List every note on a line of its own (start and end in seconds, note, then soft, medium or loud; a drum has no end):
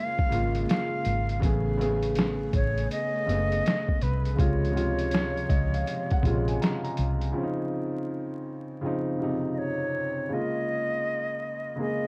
0.00 0.29 C#3 medium
0.00 1.38 C#3 medium
0.00 0.31 G#3 medium
0.00 1.39 G#3 medium
0.00 0.32 A#3 medium
0.00 1.39 A#3 medium
0.00 0.34 F4 medium
0.00 1.39 F4 medium
0.00 0.65 F5 loud
0.19 kick medium
0.29 0.64 G#1 medium
0.29 1.34 C#3 medium
0.29 1.34 G#3 medium
0.29 1.35 A#3 medium
0.29 closed hi-hat medium
0.34 1.36 F4 medium
0.55 closed hi-hat soft
0.69 1.39 F5 medium
0.69 snare loud
0.69 closed hi-hat medium
1.05 1.38 G#1 medium
1.05 closed hi-hat medium
1.29 closed hi-hat soft
1.40 2.50 A1 loud
1.40 1.76 C#3 medium
1.40 1.76 A3 medium
1.40 4.36 A3 medium
1.40 4.36 B3 medium
1.40 1.77 B3 medium
1.40 4.36 G#4 medium
1.40 kick loud
1.40 closed hi-hat medium
1.44 1.78 G#4 medium
1.77 3.16 C#3 medium
1.77 3.17 A3 medium
1.77 3.18 B3 medium
1.77 closed hi-hat medium
1.82 3.18 G#4 loud
2.03 closed hi-hat medium
2.15 snare loud
2.15 closed hi-hat medium
2.53 2.86 A1 medium
2.53 2.89 C#5 medium
2.53 kick medium
2.53 closed hi-hat medium
2.78 closed hi-hat soft
2.91 4.04 D#5 loud
2.91 closed hi-hat medium
3.26 3.60 F#1 medium
3.26 4.30 C#3 medium
3.26 4.31 A3 medium
3.26 4.31 B3 medium
3.26 closed hi-hat medium
3.30 4.32 G#4 medium
3.52 closed hi-hat soft
3.66 snare loud
3.66 closed hi-hat medium
3.88 kick medium
4.01 4.34 C2 medium
4.01 4.41 B4 medium
4.01 closed hi-hat medium
4.25 closed hi-hat soft
4.35 4.73 C3 medium
4.35 4.70 C#3 medium
4.35 7.32 F3 medium
4.35 4.72 G#3 medium
4.35 7.32 G#3 medium
4.35 kick loud
4.39 5.46 C#2 loud
4.39 4.74 F4 medium
4.39 6.61 C#5 medium
4.39 closed hi-hat medium
4.65 closed hi-hat soft
4.72 6.13 C3 medium
4.72 6.11 C#3 medium
4.72 6.12 G#3 medium
4.76 6.14 F4 medium
4.76 closed hi-hat medium
4.99 closed hi-hat medium
5.11 snare loud
5.11 closed hi-hat medium
5.37 closed hi-hat soft
5.49 5.82 C#2 medium
5.49 5.72 D#5 medium
5.49 kick medium
5.49 closed hi-hat medium
5.74 5.86 F5 medium
5.74 closed hi-hat soft
5.87 6.10 F5 medium
5.87 closed hi-hat medium
6.10 6.46 F#5 medium
6.10 kick medium
6.10 closed hi-hat soft
6.22 6.56 A#1 medium
6.22 7.28 C3 medium
6.22 7.26 C#3 medium
6.22 7.27 G#3 medium
6.22 kick medium
6.22 closed hi-hat medium
6.27 7.28 F4 medium
6.48 6.60 G#5 medium
6.48 closed hi-hat soft
6.61 6.82 A#5 medium
6.61 snare loud
6.61 closed hi-hat medium
6.84 7.31 A#5 medium
6.84 closed hi-hat soft
6.97 7.31 C2 medium
6.97 closed hi-hat medium
7.21 closed hi-hat soft
7.32 8.71 C#3 medium
7.32 8.72 F3 medium
7.32 8.73 C4 medium
7.37 7.44 C#4 medium
7.43 8.77 D#4 medium
8.81 9.17 C#3 medium
8.81 9.17 F3 medium
8.81 9.18 C4 medium
8.86 9.19 D#4 medium
9.18 10.24 C3 medium
9.18 10.22 C#3 medium
9.18 10.23 F3 medium
9.23 10.25 D#4 medium
9.53 9.60 D#5 medium
9.58 10.34 C#5 medium
10.29 11.68 C#3 medium
10.29 11.68 G#3 medium
10.29 11.69 A#3 medium
10.33 11.70 F4 medium
10.33 11.80 D#5 loud
11.76 12.07 C#3 medium
11.76 12.07 G#3 medium
11.76 12.07 A#3 medium
11.80 12.07 G#4 medium
11.80 12.07 D#5 medium